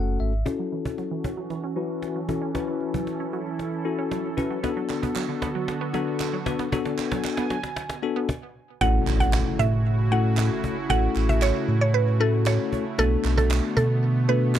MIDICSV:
0, 0, Header, 1, 9, 480
1, 0, Start_track
1, 0, Key_signature, 3, "major"
1, 0, Tempo, 521739
1, 426, Time_signature, 4, 2, 24, 8
1, 13423, End_track
2, 0, Start_track
2, 0, Title_t, "Synth pluck"
2, 0, Program_c, 0, 84
2, 8106, Note_on_c, 0, 78, 106
2, 8322, Note_off_c, 0, 78, 0
2, 8466, Note_on_c, 0, 78, 81
2, 8574, Note_off_c, 0, 78, 0
2, 8826, Note_on_c, 0, 76, 89
2, 9042, Note_off_c, 0, 76, 0
2, 9308, Note_on_c, 0, 78, 81
2, 9523, Note_off_c, 0, 78, 0
2, 10028, Note_on_c, 0, 78, 116
2, 10243, Note_off_c, 0, 78, 0
2, 10389, Note_on_c, 0, 76, 78
2, 10496, Note_off_c, 0, 76, 0
2, 10508, Note_on_c, 0, 73, 92
2, 10615, Note_off_c, 0, 73, 0
2, 10868, Note_on_c, 0, 73, 80
2, 10975, Note_off_c, 0, 73, 0
2, 10986, Note_on_c, 0, 71, 87
2, 11202, Note_off_c, 0, 71, 0
2, 11229, Note_on_c, 0, 69, 88
2, 11336, Note_off_c, 0, 69, 0
2, 11467, Note_on_c, 0, 73, 83
2, 11805, Note_off_c, 0, 73, 0
2, 11949, Note_on_c, 0, 69, 107
2, 12164, Note_off_c, 0, 69, 0
2, 12305, Note_on_c, 0, 69, 85
2, 12413, Note_off_c, 0, 69, 0
2, 12665, Note_on_c, 0, 69, 89
2, 12881, Note_off_c, 0, 69, 0
2, 13145, Note_on_c, 0, 71, 84
2, 13361, Note_off_c, 0, 71, 0
2, 13423, End_track
3, 0, Start_track
3, 0, Title_t, "Tine electric piano"
3, 0, Program_c, 1, 4
3, 0, Note_on_c, 1, 57, 82
3, 0, Note_on_c, 1, 61, 78
3, 0, Note_on_c, 1, 66, 78
3, 0, Note_on_c, 1, 69, 90
3, 0, Note_on_c, 1, 78, 73
3, 168, Note_off_c, 1, 78, 0
3, 184, Note_on_c, 1, 76, 72
3, 290, Note_off_c, 1, 57, 0
3, 291, Note_off_c, 1, 61, 0
3, 291, Note_off_c, 1, 66, 0
3, 292, Note_off_c, 1, 69, 0
3, 408, Note_off_c, 1, 76, 0
3, 419, Note_on_c, 1, 61, 82
3, 421, Note_on_c, 1, 64, 73
3, 422, Note_on_c, 1, 66, 72
3, 423, Note_on_c, 1, 69, 92
3, 1202, Note_off_c, 1, 61, 0
3, 1203, Note_off_c, 1, 64, 0
3, 1204, Note_off_c, 1, 66, 0
3, 1204, Note_off_c, 1, 69, 0
3, 1619, Note_on_c, 1, 61, 78
3, 1621, Note_on_c, 1, 64, 75
3, 1623, Note_on_c, 1, 66, 76
3, 1624, Note_on_c, 1, 71, 92
3, 2013, Note_off_c, 1, 61, 0
3, 2013, Note_off_c, 1, 64, 0
3, 2014, Note_off_c, 1, 66, 0
3, 2015, Note_off_c, 1, 71, 0
3, 2102, Note_on_c, 1, 61, 77
3, 2103, Note_on_c, 1, 64, 70
3, 2103, Note_on_c, 1, 66, 71
3, 2105, Note_on_c, 1, 69, 88
3, 2299, Note_off_c, 1, 61, 0
3, 2299, Note_off_c, 1, 64, 0
3, 2299, Note_off_c, 1, 66, 0
3, 2300, Note_off_c, 1, 69, 0
3, 2341, Note_on_c, 1, 61, 82
3, 2343, Note_on_c, 1, 64, 75
3, 2344, Note_on_c, 1, 66, 75
3, 2347, Note_on_c, 1, 71, 90
3, 3123, Note_off_c, 1, 61, 0
3, 3124, Note_off_c, 1, 64, 0
3, 3125, Note_off_c, 1, 66, 0
3, 3126, Note_off_c, 1, 71, 0
3, 3541, Note_on_c, 1, 61, 86
3, 3542, Note_on_c, 1, 64, 75
3, 3544, Note_on_c, 1, 66, 77
3, 3545, Note_on_c, 1, 69, 94
3, 3933, Note_off_c, 1, 61, 0
3, 3934, Note_off_c, 1, 64, 0
3, 3935, Note_off_c, 1, 66, 0
3, 3935, Note_off_c, 1, 69, 0
3, 4020, Note_on_c, 1, 61, 78
3, 4021, Note_on_c, 1, 64, 70
3, 4022, Note_on_c, 1, 66, 69
3, 4024, Note_on_c, 1, 71, 91
3, 4218, Note_off_c, 1, 61, 0
3, 4218, Note_off_c, 1, 64, 0
3, 4219, Note_off_c, 1, 66, 0
3, 4220, Note_off_c, 1, 71, 0
3, 4261, Note_on_c, 1, 59, 82
3, 4263, Note_on_c, 1, 62, 81
3, 4264, Note_on_c, 1, 66, 77
3, 4265, Note_on_c, 1, 69, 89
3, 5043, Note_off_c, 1, 59, 0
3, 5044, Note_off_c, 1, 62, 0
3, 5045, Note_off_c, 1, 66, 0
3, 5045, Note_off_c, 1, 69, 0
3, 5461, Note_on_c, 1, 59, 85
3, 5463, Note_on_c, 1, 62, 81
3, 5465, Note_on_c, 1, 66, 78
3, 5466, Note_on_c, 1, 69, 91
3, 5853, Note_off_c, 1, 59, 0
3, 5854, Note_off_c, 1, 62, 0
3, 5855, Note_off_c, 1, 66, 0
3, 5856, Note_off_c, 1, 69, 0
3, 5943, Note_on_c, 1, 59, 78
3, 5945, Note_on_c, 1, 62, 71
3, 5946, Note_on_c, 1, 66, 73
3, 5947, Note_on_c, 1, 71, 89
3, 6139, Note_off_c, 1, 59, 0
3, 6140, Note_off_c, 1, 62, 0
3, 6141, Note_off_c, 1, 66, 0
3, 6141, Note_off_c, 1, 71, 0
3, 6183, Note_on_c, 1, 59, 85
3, 6185, Note_on_c, 1, 62, 81
3, 6186, Note_on_c, 1, 66, 82
3, 6188, Note_on_c, 1, 69, 97
3, 6964, Note_off_c, 1, 59, 0
3, 6965, Note_off_c, 1, 62, 0
3, 6966, Note_off_c, 1, 66, 0
3, 6966, Note_off_c, 1, 69, 0
3, 7383, Note_on_c, 1, 59, 90
3, 7386, Note_on_c, 1, 62, 80
3, 7386, Note_on_c, 1, 66, 77
3, 7388, Note_on_c, 1, 69, 93
3, 7625, Note_off_c, 1, 59, 0
3, 7626, Note_off_c, 1, 62, 0
3, 7626, Note_off_c, 1, 66, 0
3, 7627, Note_off_c, 1, 69, 0
3, 8106, Note_on_c, 1, 57, 75
3, 8108, Note_on_c, 1, 61, 70
3, 8108, Note_on_c, 1, 64, 73
3, 8109, Note_on_c, 1, 66, 70
3, 8111, Note_on_c, 1, 69, 83
3, 8885, Note_off_c, 1, 57, 0
3, 8886, Note_off_c, 1, 61, 0
3, 8886, Note_off_c, 1, 64, 0
3, 8887, Note_off_c, 1, 66, 0
3, 8888, Note_off_c, 1, 69, 0
3, 9303, Note_on_c, 1, 57, 75
3, 9305, Note_on_c, 1, 61, 69
3, 9306, Note_on_c, 1, 64, 68
3, 9307, Note_on_c, 1, 66, 72
3, 9309, Note_on_c, 1, 69, 83
3, 9889, Note_off_c, 1, 57, 0
3, 9890, Note_off_c, 1, 61, 0
3, 9891, Note_off_c, 1, 64, 0
3, 9891, Note_off_c, 1, 66, 0
3, 9892, Note_off_c, 1, 69, 0
3, 10023, Note_on_c, 1, 57, 78
3, 10025, Note_on_c, 1, 61, 72
3, 10026, Note_on_c, 1, 64, 69
3, 10026, Note_on_c, 1, 66, 70
3, 10028, Note_on_c, 1, 69, 81
3, 10804, Note_off_c, 1, 57, 0
3, 10805, Note_off_c, 1, 61, 0
3, 10805, Note_off_c, 1, 64, 0
3, 10806, Note_off_c, 1, 66, 0
3, 10806, Note_off_c, 1, 69, 0
3, 11222, Note_on_c, 1, 57, 75
3, 11224, Note_on_c, 1, 61, 74
3, 11226, Note_on_c, 1, 64, 69
3, 11227, Note_on_c, 1, 66, 72
3, 11228, Note_on_c, 1, 69, 88
3, 11809, Note_off_c, 1, 57, 0
3, 11810, Note_off_c, 1, 61, 0
3, 11810, Note_off_c, 1, 64, 0
3, 11811, Note_off_c, 1, 66, 0
3, 11812, Note_off_c, 1, 69, 0
3, 11946, Note_on_c, 1, 57, 78
3, 11947, Note_on_c, 1, 59, 75
3, 11947, Note_on_c, 1, 62, 72
3, 11948, Note_on_c, 1, 66, 73
3, 11950, Note_on_c, 1, 69, 87
3, 12725, Note_off_c, 1, 57, 0
3, 12726, Note_off_c, 1, 59, 0
3, 12726, Note_off_c, 1, 62, 0
3, 12727, Note_off_c, 1, 66, 0
3, 12728, Note_off_c, 1, 69, 0
3, 13143, Note_on_c, 1, 57, 79
3, 13144, Note_on_c, 1, 59, 70
3, 13145, Note_on_c, 1, 62, 68
3, 13146, Note_on_c, 1, 66, 70
3, 13148, Note_on_c, 1, 69, 84
3, 13423, Note_off_c, 1, 57, 0
3, 13423, Note_off_c, 1, 59, 0
3, 13423, Note_off_c, 1, 62, 0
3, 13423, Note_off_c, 1, 66, 0
3, 13423, Note_off_c, 1, 69, 0
3, 13423, End_track
4, 0, Start_track
4, 0, Title_t, "Analog synth pad"
4, 0, Program_c, 2, 89
4, 425, Note_on_c, 2, 61, 73
4, 427, Note_on_c, 2, 52, 79
4, 427, Note_on_c, 2, 66, 74
4, 427, Note_on_c, 2, 69, 85
4, 2327, Note_off_c, 2, 66, 0
4, 2347, Note_on_c, 2, 64, 75
4, 4229, Note_off_c, 2, 61, 0
4, 4230, Note_off_c, 2, 52, 0
4, 4247, Note_off_c, 2, 64, 0
4, 4265, Note_on_c, 2, 66, 77
4, 4266, Note_on_c, 2, 59, 78
4, 4267, Note_on_c, 2, 50, 83
4, 6149, Note_off_c, 2, 69, 0
4, 6187, Note_on_c, 2, 80, 92
4, 7592, Note_off_c, 2, 59, 0
4, 7592, Note_off_c, 2, 66, 0
4, 7593, Note_off_c, 2, 50, 0
4, 7612, Note_off_c, 2, 80, 0
4, 8103, Note_on_c, 2, 49, 80
4, 8103, Note_on_c, 2, 66, 94
4, 8104, Note_on_c, 2, 57, 77
4, 8104, Note_on_c, 2, 64, 80
4, 11908, Note_off_c, 2, 49, 0
4, 11908, Note_off_c, 2, 64, 0
4, 11948, Note_on_c, 2, 50, 87
4, 11948, Note_on_c, 2, 59, 77
4, 13423, Note_off_c, 2, 50, 0
4, 13423, Note_off_c, 2, 57, 0
4, 13423, Note_off_c, 2, 59, 0
4, 13423, Note_off_c, 2, 66, 0
4, 13423, End_track
5, 0, Start_track
5, 0, Title_t, "Synth arpeggio sound"
5, 0, Program_c, 3, 84
5, 427, Note_on_c, 3, 61, 99
5, 508, Note_off_c, 3, 61, 0
5, 546, Note_on_c, 3, 54, 74
5, 628, Note_off_c, 3, 54, 0
5, 665, Note_on_c, 3, 52, 79
5, 747, Note_off_c, 3, 52, 0
5, 784, Note_on_c, 3, 61, 81
5, 866, Note_off_c, 3, 61, 0
5, 903, Note_on_c, 3, 54, 85
5, 986, Note_off_c, 3, 54, 0
5, 1025, Note_on_c, 3, 52, 72
5, 1107, Note_off_c, 3, 52, 0
5, 1144, Note_on_c, 3, 61, 84
5, 1226, Note_off_c, 3, 61, 0
5, 1264, Note_on_c, 3, 54, 76
5, 1347, Note_off_c, 3, 54, 0
5, 1383, Note_on_c, 3, 52, 97
5, 1466, Note_off_c, 3, 52, 0
5, 1505, Note_on_c, 3, 61, 85
5, 1587, Note_off_c, 3, 61, 0
5, 1622, Note_on_c, 3, 54, 79
5, 1705, Note_off_c, 3, 54, 0
5, 1986, Note_on_c, 3, 54, 75
5, 2067, Note_off_c, 3, 54, 0
5, 2103, Note_on_c, 3, 52, 78
5, 2186, Note_off_c, 3, 52, 0
5, 2223, Note_on_c, 3, 61, 81
5, 2306, Note_off_c, 3, 61, 0
5, 2343, Note_on_c, 3, 54, 91
5, 2426, Note_off_c, 3, 54, 0
5, 2466, Note_on_c, 3, 52, 73
5, 2548, Note_off_c, 3, 52, 0
5, 2705, Note_on_c, 3, 54, 76
5, 2787, Note_off_c, 3, 54, 0
5, 2944, Note_on_c, 3, 61, 81
5, 3026, Note_off_c, 3, 61, 0
5, 3066, Note_on_c, 3, 54, 78
5, 3147, Note_off_c, 3, 54, 0
5, 3666, Note_on_c, 3, 61, 83
5, 3748, Note_off_c, 3, 61, 0
5, 3784, Note_on_c, 3, 54, 85
5, 3866, Note_off_c, 3, 54, 0
5, 4025, Note_on_c, 3, 61, 83
5, 4107, Note_off_c, 3, 61, 0
5, 4145, Note_on_c, 3, 54, 76
5, 4227, Note_off_c, 3, 54, 0
5, 4264, Note_on_c, 3, 59, 100
5, 4347, Note_off_c, 3, 59, 0
5, 4386, Note_on_c, 3, 54, 82
5, 4468, Note_off_c, 3, 54, 0
5, 4504, Note_on_c, 3, 50, 81
5, 4586, Note_off_c, 3, 50, 0
5, 4624, Note_on_c, 3, 59, 87
5, 4706, Note_off_c, 3, 59, 0
5, 4744, Note_on_c, 3, 54, 90
5, 4827, Note_off_c, 3, 54, 0
5, 4864, Note_on_c, 3, 50, 73
5, 4946, Note_off_c, 3, 50, 0
5, 4985, Note_on_c, 3, 59, 89
5, 5067, Note_off_c, 3, 59, 0
5, 5107, Note_on_c, 3, 54, 77
5, 5189, Note_off_c, 3, 54, 0
5, 5227, Note_on_c, 3, 50, 95
5, 5308, Note_off_c, 3, 50, 0
5, 5346, Note_on_c, 3, 59, 82
5, 5428, Note_off_c, 3, 59, 0
5, 5466, Note_on_c, 3, 54, 88
5, 5548, Note_off_c, 3, 54, 0
5, 5828, Note_on_c, 3, 54, 77
5, 5909, Note_off_c, 3, 54, 0
5, 5947, Note_on_c, 3, 50, 81
5, 6028, Note_off_c, 3, 50, 0
5, 6067, Note_on_c, 3, 59, 83
5, 6148, Note_off_c, 3, 59, 0
5, 6186, Note_on_c, 3, 54, 103
5, 6268, Note_off_c, 3, 54, 0
5, 6309, Note_on_c, 3, 50, 76
5, 6390, Note_off_c, 3, 50, 0
5, 6547, Note_on_c, 3, 54, 78
5, 6629, Note_off_c, 3, 54, 0
5, 6789, Note_on_c, 3, 59, 86
5, 6869, Note_off_c, 3, 59, 0
5, 6908, Note_on_c, 3, 54, 87
5, 6989, Note_off_c, 3, 54, 0
5, 7509, Note_on_c, 3, 59, 84
5, 7589, Note_off_c, 3, 59, 0
5, 13423, End_track
6, 0, Start_track
6, 0, Title_t, "Sub bass"
6, 0, Program_c, 4, 38
6, 0, Note_on_c, 4, 30, 92
6, 162, Note_off_c, 4, 30, 0
6, 184, Note_on_c, 4, 32, 93
6, 401, Note_off_c, 4, 32, 0
6, 8106, Note_on_c, 4, 33, 107
6, 8273, Note_off_c, 4, 33, 0
6, 8346, Note_on_c, 4, 33, 95
6, 8679, Note_off_c, 4, 33, 0
6, 8826, Note_on_c, 4, 45, 98
6, 9660, Note_off_c, 4, 45, 0
6, 10026, Note_on_c, 4, 33, 109
6, 10193, Note_off_c, 4, 33, 0
6, 10265, Note_on_c, 4, 33, 96
6, 10599, Note_off_c, 4, 33, 0
6, 10746, Note_on_c, 4, 45, 96
6, 11580, Note_off_c, 4, 45, 0
6, 11947, Note_on_c, 4, 35, 101
6, 12113, Note_off_c, 4, 35, 0
6, 12185, Note_on_c, 4, 35, 94
6, 12519, Note_off_c, 4, 35, 0
6, 12667, Note_on_c, 4, 47, 96
6, 13423, Note_off_c, 4, 47, 0
6, 13423, End_track
7, 0, Start_track
7, 0, Title_t, "Impact"
7, 0, Program_c, 5, 103
7, 8107, Note_on_c, 5, 60, 89
7, 10026, Note_off_c, 5, 60, 0
7, 13423, End_track
8, 0, Start_track
8, 0, Title_t, "Cajon"
8, 423, Note_on_c, 9, 38, 53
8, 424, Note_on_c, 9, 36, 99
8, 515, Note_off_c, 9, 38, 0
8, 516, Note_off_c, 9, 36, 0
8, 786, Note_on_c, 9, 36, 89
8, 878, Note_off_c, 9, 36, 0
8, 903, Note_on_c, 9, 38, 53
8, 995, Note_off_c, 9, 38, 0
8, 1144, Note_on_c, 9, 36, 101
8, 1236, Note_off_c, 9, 36, 0
8, 1382, Note_on_c, 9, 38, 60
8, 1474, Note_off_c, 9, 38, 0
8, 1863, Note_on_c, 9, 38, 63
8, 1955, Note_off_c, 9, 38, 0
8, 2104, Note_on_c, 9, 36, 81
8, 2196, Note_off_c, 9, 36, 0
8, 2344, Note_on_c, 9, 36, 101
8, 2345, Note_on_c, 9, 38, 68
8, 2436, Note_off_c, 9, 36, 0
8, 2437, Note_off_c, 9, 38, 0
8, 2462, Note_on_c, 9, 38, 32
8, 2554, Note_off_c, 9, 38, 0
8, 2581, Note_on_c, 9, 38, 37
8, 2673, Note_off_c, 9, 38, 0
8, 2706, Note_on_c, 9, 36, 91
8, 2798, Note_off_c, 9, 36, 0
8, 2826, Note_on_c, 9, 38, 70
8, 2918, Note_off_c, 9, 38, 0
8, 2946, Note_on_c, 9, 38, 28
8, 3038, Note_off_c, 9, 38, 0
8, 3065, Note_on_c, 9, 38, 42
8, 3157, Note_off_c, 9, 38, 0
8, 3184, Note_on_c, 9, 38, 30
8, 3276, Note_off_c, 9, 38, 0
8, 3306, Note_on_c, 9, 38, 76
8, 3398, Note_off_c, 9, 38, 0
8, 3423, Note_on_c, 9, 38, 37
8, 3515, Note_off_c, 9, 38, 0
8, 3543, Note_on_c, 9, 38, 41
8, 3635, Note_off_c, 9, 38, 0
8, 3666, Note_on_c, 9, 38, 28
8, 3758, Note_off_c, 9, 38, 0
8, 3785, Note_on_c, 9, 38, 84
8, 3877, Note_off_c, 9, 38, 0
8, 3904, Note_on_c, 9, 38, 28
8, 3996, Note_off_c, 9, 38, 0
8, 4026, Note_on_c, 9, 36, 84
8, 4118, Note_off_c, 9, 36, 0
8, 4148, Note_on_c, 9, 38, 28
8, 4240, Note_off_c, 9, 38, 0
8, 4266, Note_on_c, 9, 36, 104
8, 4266, Note_on_c, 9, 38, 86
8, 4358, Note_off_c, 9, 36, 0
8, 4358, Note_off_c, 9, 38, 0
8, 4386, Note_on_c, 9, 38, 32
8, 4478, Note_off_c, 9, 38, 0
8, 4507, Note_on_c, 9, 38, 82
8, 4599, Note_off_c, 9, 38, 0
8, 4628, Note_on_c, 9, 36, 89
8, 4720, Note_off_c, 9, 36, 0
8, 4746, Note_on_c, 9, 38, 84
8, 4838, Note_off_c, 9, 38, 0
8, 4867, Note_on_c, 9, 38, 29
8, 4959, Note_off_c, 9, 38, 0
8, 4987, Note_on_c, 9, 36, 106
8, 4987, Note_on_c, 9, 38, 92
8, 5079, Note_off_c, 9, 36, 0
8, 5079, Note_off_c, 9, 38, 0
8, 5107, Note_on_c, 9, 38, 30
8, 5199, Note_off_c, 9, 38, 0
8, 5227, Note_on_c, 9, 38, 94
8, 5319, Note_off_c, 9, 38, 0
8, 5344, Note_on_c, 9, 38, 37
8, 5436, Note_off_c, 9, 38, 0
8, 5464, Note_on_c, 9, 38, 96
8, 5556, Note_off_c, 9, 38, 0
8, 5585, Note_on_c, 9, 38, 30
8, 5677, Note_off_c, 9, 38, 0
8, 5704, Note_on_c, 9, 38, 97
8, 5796, Note_off_c, 9, 38, 0
8, 5824, Note_on_c, 9, 38, 29
8, 5916, Note_off_c, 9, 38, 0
8, 5945, Note_on_c, 9, 38, 98
8, 5946, Note_on_c, 9, 36, 89
8, 6037, Note_off_c, 9, 38, 0
8, 6038, Note_off_c, 9, 36, 0
8, 6065, Note_on_c, 9, 38, 99
8, 6157, Note_off_c, 9, 38, 0
8, 6186, Note_on_c, 9, 36, 107
8, 6186, Note_on_c, 9, 38, 106
8, 6278, Note_off_c, 9, 36, 0
8, 6278, Note_off_c, 9, 38, 0
8, 6306, Note_on_c, 9, 38, 106
8, 6398, Note_off_c, 9, 38, 0
8, 6426, Note_on_c, 9, 38, 100
8, 6518, Note_off_c, 9, 38, 0
8, 6545, Note_on_c, 9, 38, 111
8, 6548, Note_on_c, 9, 36, 96
8, 6637, Note_off_c, 9, 38, 0
8, 6640, Note_off_c, 9, 36, 0
8, 6665, Note_on_c, 9, 38, 101
8, 6757, Note_off_c, 9, 38, 0
8, 6783, Note_on_c, 9, 38, 110
8, 6875, Note_off_c, 9, 38, 0
8, 6902, Note_on_c, 9, 38, 110
8, 6994, Note_off_c, 9, 38, 0
8, 7024, Note_on_c, 9, 38, 113
8, 7116, Note_off_c, 9, 38, 0
8, 7143, Note_on_c, 9, 38, 115
8, 7235, Note_off_c, 9, 38, 0
8, 7263, Note_on_c, 9, 38, 117
8, 7355, Note_off_c, 9, 38, 0
8, 7381, Note_on_c, 9, 38, 41
8, 7473, Note_off_c, 9, 38, 0
8, 7505, Note_on_c, 9, 38, 30
8, 7597, Note_off_c, 9, 38, 0
8, 7624, Note_on_c, 9, 38, 90
8, 7626, Note_on_c, 9, 36, 112
8, 7716, Note_off_c, 9, 38, 0
8, 7718, Note_off_c, 9, 36, 0
8, 8106, Note_on_c, 9, 36, 108
8, 8106, Note_on_c, 9, 38, 63
8, 8198, Note_off_c, 9, 36, 0
8, 8198, Note_off_c, 9, 38, 0
8, 8468, Note_on_c, 9, 36, 96
8, 8560, Note_off_c, 9, 36, 0
8, 8585, Note_on_c, 9, 38, 114
8, 8677, Note_off_c, 9, 38, 0
8, 8708, Note_on_c, 9, 38, 31
8, 8800, Note_off_c, 9, 38, 0
8, 8827, Note_on_c, 9, 36, 109
8, 8919, Note_off_c, 9, 36, 0
8, 8946, Note_on_c, 9, 38, 32
8, 9038, Note_off_c, 9, 38, 0
8, 9069, Note_on_c, 9, 38, 57
8, 9161, Note_off_c, 9, 38, 0
8, 9187, Note_on_c, 9, 38, 37
8, 9279, Note_off_c, 9, 38, 0
8, 9428, Note_on_c, 9, 38, 29
8, 9520, Note_off_c, 9, 38, 0
8, 9548, Note_on_c, 9, 38, 126
8, 9640, Note_off_c, 9, 38, 0
8, 9666, Note_on_c, 9, 38, 30
8, 9758, Note_off_c, 9, 38, 0
8, 9787, Note_on_c, 9, 36, 92
8, 9879, Note_off_c, 9, 36, 0
8, 10026, Note_on_c, 9, 36, 111
8, 10026, Note_on_c, 9, 38, 60
8, 10118, Note_off_c, 9, 36, 0
8, 10118, Note_off_c, 9, 38, 0
8, 10264, Note_on_c, 9, 38, 41
8, 10356, Note_off_c, 9, 38, 0
8, 10388, Note_on_c, 9, 36, 93
8, 10480, Note_off_c, 9, 36, 0
8, 10506, Note_on_c, 9, 38, 119
8, 10598, Note_off_c, 9, 38, 0
8, 10746, Note_on_c, 9, 38, 42
8, 10838, Note_off_c, 9, 38, 0
8, 10866, Note_on_c, 9, 38, 32
8, 10958, Note_off_c, 9, 38, 0
8, 11105, Note_on_c, 9, 38, 39
8, 11197, Note_off_c, 9, 38, 0
8, 11225, Note_on_c, 9, 38, 44
8, 11317, Note_off_c, 9, 38, 0
8, 11349, Note_on_c, 9, 38, 30
8, 11441, Note_off_c, 9, 38, 0
8, 11468, Note_on_c, 9, 38, 126
8, 11560, Note_off_c, 9, 38, 0
8, 11588, Note_on_c, 9, 38, 30
8, 11680, Note_off_c, 9, 38, 0
8, 11707, Note_on_c, 9, 36, 91
8, 11799, Note_off_c, 9, 36, 0
8, 11829, Note_on_c, 9, 38, 29
8, 11921, Note_off_c, 9, 38, 0
8, 11947, Note_on_c, 9, 36, 107
8, 11948, Note_on_c, 9, 38, 64
8, 12039, Note_off_c, 9, 36, 0
8, 12040, Note_off_c, 9, 38, 0
8, 12309, Note_on_c, 9, 36, 99
8, 12401, Note_off_c, 9, 36, 0
8, 12426, Note_on_c, 9, 38, 116
8, 12518, Note_off_c, 9, 38, 0
8, 12547, Note_on_c, 9, 38, 30
8, 12639, Note_off_c, 9, 38, 0
8, 12667, Note_on_c, 9, 36, 110
8, 12759, Note_off_c, 9, 36, 0
8, 12786, Note_on_c, 9, 38, 31
8, 12878, Note_off_c, 9, 38, 0
8, 12909, Note_on_c, 9, 38, 54
8, 13001, Note_off_c, 9, 38, 0
8, 13026, Note_on_c, 9, 38, 39
8, 13118, Note_off_c, 9, 38, 0
8, 13145, Note_on_c, 9, 38, 45
8, 13237, Note_off_c, 9, 38, 0
8, 13268, Note_on_c, 9, 38, 32
8, 13360, Note_off_c, 9, 38, 0
8, 13387, Note_on_c, 9, 38, 126
8, 13423, Note_off_c, 9, 38, 0
8, 13423, End_track
9, 0, Start_track
9, 0, Title_t, "Drums"
9, 4503, Note_on_c, 9, 39, 70
9, 4595, Note_off_c, 9, 39, 0
9, 4744, Note_on_c, 9, 39, 85
9, 4836, Note_off_c, 9, 39, 0
9, 5703, Note_on_c, 9, 39, 77
9, 5795, Note_off_c, 9, 39, 0
9, 6424, Note_on_c, 9, 39, 72
9, 6516, Note_off_c, 9, 39, 0
9, 6665, Note_on_c, 9, 39, 83
9, 6757, Note_off_c, 9, 39, 0
9, 8346, Note_on_c, 9, 39, 74
9, 8438, Note_off_c, 9, 39, 0
9, 8586, Note_on_c, 9, 39, 86
9, 8678, Note_off_c, 9, 39, 0
9, 9542, Note_on_c, 9, 39, 81
9, 9634, Note_off_c, 9, 39, 0
9, 10263, Note_on_c, 9, 39, 71
9, 10355, Note_off_c, 9, 39, 0
9, 10505, Note_on_c, 9, 39, 85
9, 10597, Note_off_c, 9, 39, 0
9, 11464, Note_on_c, 9, 39, 80
9, 11556, Note_off_c, 9, 39, 0
9, 12185, Note_on_c, 9, 39, 77
9, 12277, Note_off_c, 9, 39, 0
9, 12427, Note_on_c, 9, 39, 87
9, 12519, Note_off_c, 9, 39, 0
9, 13385, Note_on_c, 9, 39, 81
9, 13423, Note_off_c, 9, 39, 0
9, 13423, End_track
0, 0, End_of_file